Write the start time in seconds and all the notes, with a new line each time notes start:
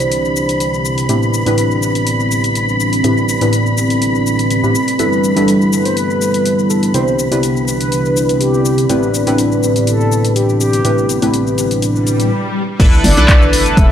Already playing: C3 C4 D4 E4 G4 C5 D5 E5 B5, downlifter
0.00 closed hi-hat, shaker
0.12 closed hi-hat, shaker
0.25 shaker
0.36 shaker
0.49 closed hi-hat, shaker
0.60 closed hi-hat, shaker
0.74 shaker
0.85 shaker
0.98 closed hi-hat, shaker
1.09 A2 C4 D4 E4 G4 A4 B4, closed hi-hat, shaker
1.23 shaker
1.34 shaker
1.46 A2 C4 D4 E4 G4 B4, closed hi-hat, shaker
1.58 closed hi-hat, shaker
1.71 shaker
1.83 shaker
1.95 closed hi-hat, shaker
2.07 closed hi-hat, shaker
2.20 shaker
2.31 shaker
2.44 closed hi-hat, shaker
2.55 closed hi-hat, shaker
2.69 shaker
2.80 shaker
2.93 closed hi-hat, shaker
3.04 A2 C4 D4 E4 G4 B4, closed hi-hat, shaker
3.18 shaker
3.29 shaker
3.41 A2 C4 D4 E4 G4 B4, closed hi-hat, shaker
3.53 closed hi-hat, shaker
3.66 shaker
3.78 shaker
3.90 closed hi-hat, shaker
4.02 closed hi-hat, shaker
4.15 shaker
4.27 shaker
4.39 closed hi-hat, shaker
4.50 closed hi-hat, shaker
4.63 A2 C4 D4 E4 G4 B4, shaker
4.75 shaker
4.88 closed hi-hat, shaker
4.99 G3 B3 D4 E4 G4 A4 B4 E5, closed hi-hat, shaker
5.13 shaker
5.24 shaker
5.36 G3 D4 E4 A4 B4, closed hi-hat, shaker
5.48 closed hi-hat, shaker
5.62 shaker
5.72 B4, shaker
5.85 C5, closed hi-hat, shaker
5.97 B4, closed hi-hat, shaker
6.10 shaker
6.22 shaker
6.34 closed hi-hat, shaker
6.46 closed hi-hat, shaker
6.59 shaker
6.70 A4, shaker
6.83 closed hi-hat, shaker
6.94 C3 C4 D4 E4 G4 C5 D5 B5, closed hi-hat, shaker
7.08 shaker
7.19 shaker
7.31 C3 D4 E4 G4 B4, closed hi-hat, shaker
7.43 closed hi-hat, shaker
7.57 shaker
7.68 B4, shaker
7.80 closed hi-hat, shaker
7.92 closed hi-hat, shaker
8.05 shaker
8.17 shaker
8.29 closed hi-hat, shaker
8.40 G4, closed hi-hat, shaker
8.54 shaker
8.65 shaker
8.78 closed hi-hat, shaker
8.89 A2 C4 D4 E4 G4 A4 B4, closed hi-hat, shaker
9.03 shaker
9.14 shaker
9.26 A2 C4 D4 E4 G4 B4, closed hi-hat, shaker
9.38 closed hi-hat, shaker
9.52 shaker
9.63 shaker
9.76 closed hi-hat, shaker
9.87 A4, closed hi-hat, shaker
10.01 shaker
10.12 shaker
10.25 closed hi-hat, shaker
10.36 G4, closed hi-hat, shaker
10.49 shaker
10.60 G4, shaker
10.73 closed hi-hat, shaker
10.84 A2 C4 D4 E4 G4 B4, closed hi-hat, shaker
10.98 shaker
11.09 closed hi-hat, shaker
11.22 A2 C4 D4 E4 G4 B4, closed hi-hat, shaker
11.34 closed hi-hat, shaker
11.47 shaker
11.58 closed hi-hat, shaker
11.71 closed hi-hat, shaker
11.82 closed hi-hat, swell, shaker
11.96 shaker
12.07 closed hi-hat, shaker
12.20 closed hi-hat, shaker
12.79 G1 D4 E4 A4 B4 G5, kick, closed hi-hat, crash, impact, shaker
12.93 shaker
13.04 G1 D5, open hi-hat, shaker
13.17 B1 D4 E4 A4 B4, closed hi-hat, shaker
13.28 kick, clap, closed hi-hat, shaker
13.42 shaker
13.53 G1, open hi-hat, shaker
13.66 closed hi-hat, shaker
13.77 E1 E5, kick, closed hi-hat, shaker